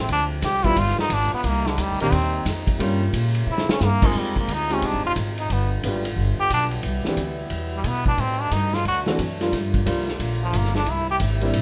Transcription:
Already playing: F3
0.00 C4
0.08 D2 D3 G#3 C4 D4, kick, ride
0.42 C2 G4, kick, snare, hi-hat pedal, ride
0.64 F3 G3 B3 D4 E4 F4, kick, ride
0.76 G1 G3 B3 F4, kick, ride
0.88 snare
0.99 D#4, muted upright bass stroke, snare
1.10 G#1 D4, kick, hi-hat pedal, ride
1.33 B3, muted upright bass stroke
1.44 C2 C3 A#3 D#4, kick, ride
1.66 D3, snare
1.78 D2 G3, kick, hi-hat pedal, ride
1.90 C2
2.00 A#1 D#3 A#3 C4 D4 G4, ride
2.12 D#2 C4, kick, ride
2.45 F2, kick, snare, hi-hat pedal, ride
2.67 kick, ride
2.79 G2 C#3 G3 A#3 C#4 F4 G4, kick, ride
3.13 A#2, kick, hi-hat pedal, ride
3.35 ride
3.47 C3 C4 E4
3.51 E4
3.58 snare
3.69 C#4, muted upright bass stroke, snare
3.80 G2, snare, hi-hat pedal
3.85 A#3
4.02 G#3 C4 D#4 F4 A#4, kick, crash
4.14 F2 G#3 C4 D#4 F4
4.19 G3
4.36 A#3, kick
4.48 D2, kick, hi-hat pedal, ride
4.53 D#4
4.70 G#3 C4 D#4 F4 G4, ride
4.74 C#4
4.82 C2, kick, ride
4.86 D4
4.94 G#1
5.05 F1 F4
5.16 G#1, kick, hi-hat pedal, ride
5.38 D#4, ride
5.50 G1 D3 G3 B3 F4, kick, ride
5.83 G#1 G3 B3 D4 F4 G4, kick, hi-hat pedal, ride
6.05 ride
6.16 G1, kick
6.38 G4, muted upright bass stroke
6.50 B1 D4, kick, hi-hat pedal, ride
6.71 ride
6.82 C2 B2 E4, kick, ride
7.05 E3 B3 C4 D4 G4, muted upright bass stroke, snare
7.17 D2, kick, hi-hat pedal, ride
7.50 E2, kick, ride
7.76 G3
7.84 B2, kick, hi-hat pedal, ride
7.88 B3
8.06 D4, kick
8.18 A2 A3 C4 D#4, kick, ride
8.41 D4
8.51 G2 D#4, kick, hi-hat pedal, ride
8.73 F4, snare
8.85 D2 F#3 D4 F#4, kick, ride
9.06 E3 A3 C4 D4 F#4, snare
9.19 F#2, kick, hi-hat pedal, ride
9.41 F3 G3 A#3 D4 F4, snare, ride
9.52 G2 D3 G3 A#3 F4, kick, snare, ride
9.74 kick, ride
9.86 C2 F3 G3 A#3 D4 F4, kick, hi-hat pedal, ride
10.08 snare
10.19 A#1, kick, ride
10.43 F3
10.53 G1, kick, hi-hat pedal, ride
10.58 A#3
10.65 snare
10.75 D4, snare
10.86 C2 C3 A#3 E4, kick, ride
10.91 E4
11.10 G4
11.20 G#1, kick, hi-hat pedal, ride
11.41 G3 A#3 C4 D4 E4, ride
11.53 A#1, kick, ride

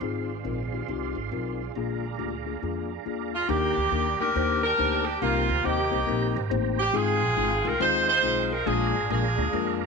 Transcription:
Already playing: C4 D5 C6
0.01 G#1 G#2 D#3 G#3 C4 D#4 F4 G#4 F5
0.45 A#1 C4 D#4 F4 A#4
0.73 C4 D#4 F4 G4
0.88 C2 C4 D#4 F4 G4
1.15 G#1
1.32 B1 C4 D#4 F4 A#4
1.75 A#1 A#2 D3 G#3 A#3 D4 F4 G#4 D5 F5 A#5
2.19 D2 A#3 D4 F4 G4
2.46 A#3 D4 F4 G#4
2.62 F2 A#3 D4 F4 G#4
3.06 E2 A#3 D4 F4 G#4
3.35 F4
3.47 D#2 D#3 A#3 D4 D#4 G4 A#4 D5 G5 A#5
3.77 D2
3.91 D#2 A#3 D4 D#4 G4 A#4
4.20 D2 A#3 D4 D#4 G4 A#4
4.35 D#2 A#3 D4 D#4 G4 C5
4.63 D4 G4 A#4
4.78 D2 A#3 D4 D#4 G4 C5
5.05 G4
5.21 C2 C3 A#3 C4 D#4 F4 G4 A#4 C5
5.49 D2
5.64 D#2 A#3 C4 D#4 G4 C5
5.91 C2 A#3 C4 D#4 G4 C5
6.07 A#1 A#3 C4 D#4 G4 A#4
6.36 G#1
6.50 A1 A#3 C4 D#4 G4 C5
6.79 G4
6.93 G#1 G#2 G#3 C4 D#4 F4 G#4 F5 C6
7.22 A#1
7.36 G#1 G#3 C4 D#4 F4 G#4
7.64 C2 G#3 C4 D#4 F4 A#4
7.80 D#2 G#3 C4 D#4 F4 G#4 C5
8.07 D#4 F4 C5
8.23 B1 G#3 C4 D#4 F4 G#4
8.52 A#4
8.66 A#1 A#2 G#3 A#3 D4 F4 G#4 D5 A#5
8.95 G#1
9.10 A#1 G#3 A#3 D4 F4 G#4 A#4
9.37 D2 G#3 A#3 D4 F4 G#4
9.53 F2 G#3 A#3 D4 F4 A#4

